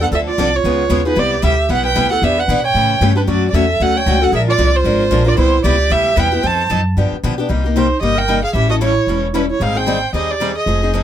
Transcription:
Already playing: E2
0.00 B3 D4 G4 A4 F#5
0.11 D2 D3 F3 C4 D4 A4 E5
0.28 F4 D5
0.38 C2 D3 F3 C4 D4 A4
0.54 F4 C#5
0.64 C#2 C#3 G#3 B3 F4 G#4
0.90 D#2 C#3 G#3 B3 F4 G#4
1.05 B3 D#4 F4 G#4 B4
1.16 C2 C3 G3 B3 E4 G4 D5
1.42 D2 C3 G3 B3 E4 G4 E5
1.69 B1 C3 G3 B3 E4 G4 B4 F#5
1.85 B4 G5
1.95 D2 C3 G3 B3 E4 G4
2.10 B3 E4 G4 A4 F#5
2.22 E2 E3 B3 D4 G4 E5
2.38 B4 F#5
2.48 B2 E3 B3 D4 G4
2.64 C#5 G5
2.74 A2 C#3 E3 A3 C#4 G4
3.01 G2 C#3 E3 A3 C#4 G4
3.16 A3 C#4 D4 G4 B4
3.27 F#2 D3 F#3 A3 C#4 F#4 D5
3.48 F#4 D5
3.53 E2 D3 F#3 A3 C#4 F#4 A4 E5
3.80 D2 D3 F#3 A3 C#4 F#4 A4 F#5
3.96 C#5 G5
4.06 C#2 D3 F#3 A3 C#4 F#4
4.22 A3 C#4 F#4 A4 F#5
4.32 A#1 F3 G#3 D4 F4 G#4 A#4 E5
4.48 F4 D5
4.58 C2 F3 G#3 D4 F4 A#4
4.73 F4 C5
4.84 G#1 F3 G#3 D4 F4 A#4
5.11 A#1 F3 G#3 D4 F4 A#4
5.25 D4 F4 A#4 D5
5.37 C2 C3 G3 B3 E4 G4 C5
5.64 C#2 C3 G3 B3 E4 G4 D5
5.90 D2 C3 G3 B3 E4 G4 E5
6.16 E2 C3 G3 B3 E4 G4 B4 G5
6.32 B3 E4 G4
6.43 F2 F3 C4 D#4 A4 C5 A5
6.70 F#2 F3 C4 D#4 A4
6.97 G2 D3 F3 B3 D4 G4
7.12 muted upright bass stroke
7.24 B2 D3 F3 B3 D4 G4
7.38 B3 D4 G4
7.49 C2 C3 G3 A#3 D#4 G4
7.64 A#3 D#4 G4
7.75 C3 G3 A#3 D#4 G4 C5
8.01 G1 C3 G3 A#3 D#4 G4 D#5
8.16 A#4 G5
8.28 C3 G3 A#3 D#4 G4
8.42 G#4 F5
8.53 A1 E3 G3 C#4 E4 G4 A4 E5
8.70 C#4 E4 F#4 A4 D#5
8.81 E3 G3 C#4 E4 A4 C#5
9.07 E1 E3 G3 C#4 E4 A4
9.33 E3 G3 C#4 E4 A4 B4
9.49 E4 C#5
9.60 G#1 D#3 G3 C4 D#4 G#4 F5
9.75 C4 D#4 G#4 C5 G5
9.86 D#3 G3 C4 D#4 G#4
10.13 D#2 D#3 G3 C4 D#4 G4 G#4 D#5
10.30 G4 D5
10.40 D#3 G3 C4 D#4 G#4
10.56 G#4 D#5
10.66 F1 F3 C4 D#4 G#4
10.82 C4 D#4 G#4
10.94 F3 C4 D#4 G#4

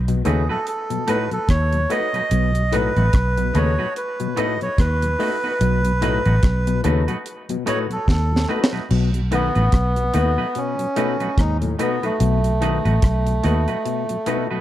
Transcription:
Already playing: B1
0.08 B2 F#3, closed hi-hat
0.25 D#2 C#3 A3 B3 D#4 F#4 G#4 A4 B4, closed hi-hat
0.49 B2 F#3 A3 D#4 F#4 A4 B4
0.67 A4, closed hi-hat
0.90 B2 F#3, closed hi-hat
1.07 A2 A3 B3 D#4 F#4 A4 B4, closed hi-hat
1.31 B2 F#3 A4 B4, closed hi-hat
1.49 D#2 C#5, kick, cross-stick, closed hi-hat
1.73 B2 F#3, closed hi-hat
1.89 A3 B3 D#4 F#4 A4 B4 D#5, closed hi-hat
2.13 B2 F#3 A3 D#4 F#4 B4, closed hi-hat
2.31 B1 B2, closed hi-hat
2.55 B2 F#3, closed hi-hat
2.72 A2 A3 B3 D#4 F#4 A4 B4, closed hi-hat
2.96 A1 B2 F#3 A3 D#4 F#4 B4, closed hi-hat
3.13 B1, kick, cross-stick, closed hi-hat
3.37 B2 F#3, closed hi-hat
3.54 D#2 C#3 A3 B3 D#4 F#4 A4 B4 C#5, closed hi-hat
3.78 B2 F#3 A3 D#4 F#4 B4
3.96 B4, closed hi-hat
4.20 B2 F#3, closed hi-hat
4.36 A2 A3 B3 D#4 F#4 A4 B4 D#5, closed hi-hat
4.61 B2 F#3 C#5, closed hi-hat
4.78 D#2 B4, kick, cross-stick, closed hi-hat
5.02 B2 F#3, closed hi-hat
5.19 A3 B3 D#4 F#4 A4 B4, open hi-hat
5.43 A3 B3 D#4 F#4 B4
5.61 B1 B2, closed hi-hat
5.84 B2 F#3, closed hi-hat
6.01 A2 A3 B3 D#4 F#4 A4 B4, closed hi-hat
6.25 A1 B2 F#3 A3 D#4 F#4 B4, closed hi-hat
6.43 B1, kick, cross-stick, closed hi-hat
6.67 B2 F#3, closed hi-hat
6.84 D#2 C#3 A3 B3 D#4 F#4 A4 B4, closed hi-hat
7.08 B2 F#3 A3 D#4 F#4 B4, closed hi-hat
7.26 closed hi-hat
7.49 B2 F#3, closed hi-hat
7.66 A2 A3 B3 D#4 F#4 A4 B4 C#5, closed hi-hat
7.90 B2 F#3 A4, closed hi-hat
8.08 D#2 A4, kick, snare
8.31 B2 F#3
8.36 snare
8.48 A3 B3 D#4 F#4 A4 B4
8.64 snare
8.72 B2 F#3 A3 D#4 F#4 B4
8.90 B1 B2, crash
9.14 B2 F#3, closed hi-hat
9.31 D#3 A3 B3 D#4 F#4 A4 B4, closed hi-hat
9.55 A1 B2 F#3 A3 D#4 F#4 B4, closed hi-hat
9.72 B1, kick, cross-stick, closed hi-hat
9.96 B2 F#3, closed hi-hat
10.13 D#2 A3 B3 D#4 F#4 A4 B4, closed hi-hat
10.37 B2 F#3 A3 D#4 F#4 A4 B4
10.55 B2 C#4, closed hi-hat
10.79 B2 F#3, closed hi-hat
10.96 B2 A3 B3 D#4 F#4 A4 B4, closed hi-hat
11.20 B2 F#3 A3 D#4 F#4 B4, closed hi-hat
11.38 D#2 G#2 D#4, kick, cross-stick, closed hi-hat
11.62 A2 B2 F#3, closed hi-hat
11.78 B2 A3 B3 D#4 F#4 A4 B4, closed hi-hat
12.02 B2 F#3 A3 D#4 F#4 A4 B4, closed hi-hat
12.20 B1 B2, closed hi-hat
12.44 B2 F#3, closed hi-hat
12.61 D#3 A3 B3 D#4 F#4 A4 B4, closed hi-hat
12.85 A1 B2 F#3 A3 D#4 F#4 B4, closed hi-hat
13.02 B1, kick, cross-stick, closed hi-hat
13.26 B2 F#3, closed hi-hat
13.43 D#2 A3 B3 D#4 F#4 A4 B4, closed hi-hat
13.68 B2 F#3 A3 D#4 F#4 A4 B4, closed hi-hat
13.85 B2, closed hi-hat
14.09 B2 F#3, closed hi-hat
14.26 B2 A3 B3 D#4 F#4 A4 B4, closed hi-hat
14.51 B2 F#3 A3 D#4 F#4 B4

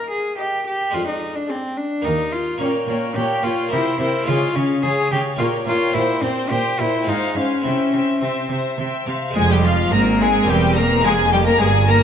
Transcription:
Already playing: A#3 D#4 D#5 G5
0.10 G#4
0.38 G4 A#4 D#5 G5
0.67 G4
0.90 F2 G#3 D4 F4
0.95 F2
1.08 D#4
1.35 D4
1.49 C4 G#4 D5 G#5
1.77 D4
2.02 D#2 A#3 D#4 A#4 G5
2.32 F4
2.58 A#2 A#3 C#4 A#4 C#5 G5
2.87 A#2 A#3 A#4 C#5 G5
3.16 A#2 G4 A#4 C#5 G5
3.43 A#2 F4 A#4 C#5 G5
3.69 C3 A#3 C4 C5
3.73 E4 A#4 G5
3.99 C3 E4 A#4 C5 G5
4.23 G#3 C#4 F4
4.27 C#3 F4 G#4 C#5 F5
4.55 C#3 C#4 G#4 C#5 F5
4.83 C#3 G#4 C#5 F5
5.11 C#3 G4 G#4 C#5 F5
5.36 A#2 C#4 F4 G4 A#4 C#5 G5
5.67 A#2 F4 A#4 C#5 G5
5.91 A#2 C4 E4 G4 C5 G5
5.96 C5
6.23 A#2 C4 C5 G5
6.51 A#2 G4 C5 G5
6.79 A#2 E4 C5 G5
7.03 G#3 C4 F4
7.07 G#2 D#4 C5 F5 G#5
7.36 G#2 C#4 C5 F5 G#5
7.62 C3 C4 C#4 E4 C5 E5 G5
7.92 C3 C5 E5 G5
8.22 C3 C4 C5 E5
8.49 C3 C5 E5
8.78 C3 C5 E5 G5
9.07 C3 C5 E5 F5
9.30 G#3 C4 G#4
9.35 F1 F2 G#3 G#4 G#5
9.50 G3 G4 G5
9.64 F3 F4 F5
9.92 G#1 G#2 A#3 C4 A#4 A#5
10.20 G#3 G#4 G#5
10.43 A#3 C4 G4
10.48 E1 E2 G3 G4 G5
10.76 A#3 A#4 A#5
11.00 F1 F2 G#3 C4 F4 G#5
11.04 F2 G#3 A#3 G#4
11.32 G3 G4 G5
11.46 A#3 A#4 A#5
11.59 G1 G2 G#3 G#4 G#5
11.88 A#3 A#4 A#5

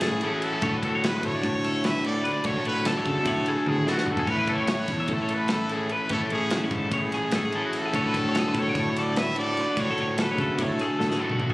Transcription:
Already playing: A2 E3 A3 C#4 E4 G#4
0.01 A2 A4, snare, ride
0.12 G#4
0.21 A2 E3 A3 A4, ride
0.25 C#4 E4
0.33 F#4
0.42 A4, ride
0.53 G#4
0.62 A2 D3 A3 D4 F#4 C#5, kick, ride
0.73 B4
0.83 A4, kick, ride
0.95 C#5
1.04 G#4 B4, snare, ride
1.15 B4
1.23 A2 A4 C#5, kick, ride
1.35 D5
1.43 A2 A4, kick, snare, ride
1.55 C#5
1.64 A4, ride
1.84 B4 E5, snare, ride
2.04 A2 D3 A3 D4 F#4 A4 D5, ride
2.24 B4, snare, ride
2.28 D5
2.44 A2 D3 A3 D4 F#4 C#5, kick, ride
2.56 A4
2.65 A2 B4 C#5, ride
2.85 A4, snare, ride
2.97 C#5
3.05 C#3 A4, kick, ride
3.25 A2 C#5, kick, snare, ride
3.46 G#4, ride
3.66 A2 G#4 A4, high tom
3.79 G#4
3.86 A2 D3 A3 D4 F#4 A4, snare
3.91 F#4
3.98 F#4, snare
4.06 floor tom
4.11 A4
4.17 G#4, kick
4.27 A2 E3 A3 C#4 B4 C#5, kick, crash
4.31 E4
4.39 B4
4.47 A4, kick, ride
4.53 C#5
4.59 C#5
4.67 G#4 C#5, snare, ride
4.79 B4
4.88 E2 A4, kick, snare, ride
5.00 E5
5.08 A2 A4, kick, ride
5.14 A4
5.22 C#5
5.29 A4, ride
5.34 B4
5.48 A4, snare, ride
5.52 B4
5.69 E3 A3 C#4 E4 A4, ride
5.74 A2 G#4
5.89 B4, ride
6.09 A2 E3 A3 C#4 A4 C#5, kick, ride
6.13 E4
6.22 A4
6.30 A2 G#4 C#5, ride
6.50 A4, snare, ride
6.64 C#5
6.70 G#2 A4, kick, ride
6.91 A2 C#5, kick, ride
6.95 G#4
7.12 G#4, snare, ride
7.31 A2 A4, snare, ride
7.45 G#4
7.52 A2 E3 A3 C#4 E4 A4, ride
7.65 F#4
7.73 snare, ride
7.79 A4
7.86 G#4
7.93 A2 D3 A3 D4 F#4 C#5, kick, ride
8.06 B4
8.14 A4, kick, snare, ride
8.29 C#5
8.35 snare, ride
8.39 G#4
8.48 B4
8.54 A2 A4, kick, snare, ride
8.59 C#5
8.69 D5
8.75 A2, kick, snare, ride
8.80 A4
8.90 C#5
8.96 A4 D5, snare, ride
9.16 B4 E5, snare, ride
9.36 D3 A3 D4 F#4 A4 D5, ride
9.40 A2
9.57 B4, snare, ride
9.77 A2 D3 A3 D4 F#4 C#5, kick, ride
9.90 A4
9.98 A2 C#5, ride
10.18 A4 B4, snare, ride
10.31 C#5
10.38 C#3 A4, kick, snare, ride
10.58 A2 C#5, kick, ride
10.64 A4
10.79 G#4, snare, ride
10.99 A2 A4, snare
11.09 G#4, snare
11.20 A2 D3 A3 D4 F#4 A4
11.30 F#4, mid tom
11.40 mid tom
11.50 G#4, floor tom

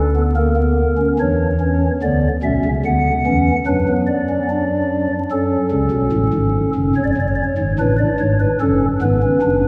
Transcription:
Already playing: D2 D3 A4
0.16 B3
0.36 A#3 A#4
0.56 B3
0.98 C#4
1.19 E2 E3 D4 C#5
1.60 C#4
2.02 D2 D3 B3 D5
2.43 B1 B2 C#4 E5
2.65 C#2 C#3
2.85 D2 D3 B3 F#5
3.26 E2 E3 C#4
3.66 F#2 F#3 D4 B4
3.88 B3
4.07 D5
4.29 C#4
4.50 D4
5.31 F#2 F#3 C#4 A4
5.71 C#2 C#3
5.91 B1 B2
6.12 A1 A2
6.33 G#1 G#2
6.75 F#1 F#2
6.96 F1 F2 C#5
7.04 D5
7.12 C#5
7.17 F#1 F#2 D5
7.28 C#5
7.36 D5
7.43 C#5
7.58 G#1 G#2
7.79 A1 A2 D4 B4
7.99 D5
8.20 G#1 G#2 C#5
8.40 B4
8.60 F#1 F#2 C#4 A4
9.01 G#1 G#2 B3 B4
9.22 C#4
9.42 F#1 F#2 D4

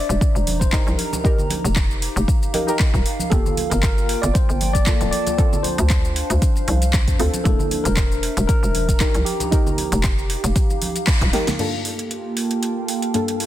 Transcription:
Already playing: D4 E4 A#4 C5 D5 E5
0.00 A#5
0.09 E1, shaker
0.21 kick, shaker
0.35 E1, shaker
0.47 open hi-hat, high conga
0.60 C5, kick, shaker
0.72 D#4 G4 A#4, kick, clap, shaker
0.87 C2, high conga, shaker
0.97 D#4 A#4, open hi-hat
1.13 muted conga, high conga, shaker
1.23 D#4 G4 A#4, kick, shaker
1.38 low conga, shaker
1.50 open hi-hat, high conga
1.65 F1, muted conga, shaker
1.75 F5, kick, clap, shaker
1.91 shaker
2.02 open hi-hat
2.16 F1, shaker
2.28 kick, shaker
2.43 muted conga, shaker
2.53 D#4 G4 A#4, open hi-hat, high conga
2.67 D#4 G4 A#4, shaker
2.79 kick, clap, shaker
2.94 D#1, kick, shaker
3.06 open hi-hat
3.19 high conga, shaker
3.30 G1 A#3 F4 G4 A4, kick, closed hi-hat, shaker
3.43 A#3, low conga, shaker
3.55 G5, open hi-hat, high conga
3.70 G1 A#4, closed hi-hat, muted conga, shaker
3.82 A#4, kick, clap, closed hi-hat, shaker
3.98 shaker
4.09 open hi-hat
4.22 G1 D5 A5, closed hi-hat, shaker
4.34 C5, kick, closed hi-hat, shaker
4.49 G1, shaker
4.61 open hi-hat, high conga
4.73 D5, kick, closed hi-hat, shaker
4.86 A#3 F4 A4, kick, clap, closed hi-hat, shaker
5.01 D1, closed hi-hat, high conga, shaker
5.11 D5, open hi-hat
5.27 closed hi-hat, muted conga, high conga, shaker
5.37 C4 D4 F4 A4, kick, closed hi-hat, shaker
5.53 low conga, shaker
5.63 C5, open hi-hat, high conga
5.78 D2, closed hi-hat, muted conga, shaker
5.90 F5, kick, clap, closed hi-hat, shaker
6.05 shaker
6.16 open hi-hat
6.30 D2, closed hi-hat, shaker
6.42 kick, closed hi-hat, shaker
6.56 muted conga, shaker
6.68 C2, open hi-hat, high conga
6.82 closed hi-hat, shaker
6.93 kick, clap, closed hi-hat, shaker
7.08 F2, kick, closed hi-hat, shaker
7.19 D2 C4 F4 A4, open hi-hat
7.34 closed hi-hat, high conga, shaker
7.44 E1 A#3 D4 E4 A4, kick, closed hi-hat, shaker
7.59 low conga, shaker
7.70 E5, open hi-hat, high conga
7.84 E1 A#4, closed hi-hat, muted conga, shaker
7.97 kick, clap, closed hi-hat, shaker
8.12 shaker
8.23 open hi-hat
8.27 A#5
8.37 E1, closed hi-hat, shaker
8.47 A#4, kick, closed hi-hat, shaker
8.63 E1, shaker
8.75 open hi-hat, high conga
8.89 kick, closed hi-hat, shaker
9.00 D#4 G4 A#4, kick, clap, closed hi-hat, shaker
9.14 C2, closed hi-hat, high conga, shaker
9.25 D#4 G4, open hi-hat
9.40 closed hi-hat, muted conga, high conga, shaker
9.51 D#4 G4 A#4, kick, closed hi-hat, shaker
9.58 G4
9.67 low conga, shaker
9.78 open hi-hat, high conga
9.92 F1, closed hi-hat, muted conga, shaker
10.01 F5, kick, clap, closed hi-hat, shaker
10.18 shaker
10.30 open hi-hat
10.44 F1, closed hi-hat, shaker
10.56 kick, closed hi-hat, shaker
10.70 muted conga, shaker
10.82 open hi-hat, high conga
10.96 closed hi-hat, shaker
11.07 kick, clap, closed hi-hat, shaker
11.21 D#1, kick, closed hi-hat, muted conga, shaker
11.33 D#4 G4 A#4, snare, open hi-hat, high conga
11.47 snare, closed hi-hat, high conga, low conga, shaker
11.58 G2 A#3 D4 F4 G4 A4 F5, closed hi-hat, crash
11.77 A5
11.85 G5, open hi-hat
11.89 A#3
11.99 closed hi-hat
12.11 closed hi-hat
12.37 open hi-hat
12.51 closed hi-hat
12.63 closed hi-hat
12.88 open hi-hat
13.02 closed hi-hat
13.14 G2 A#3 D4 F4 A4, closed hi-hat
13.28 closed hi-hat
13.40 open hi-hat

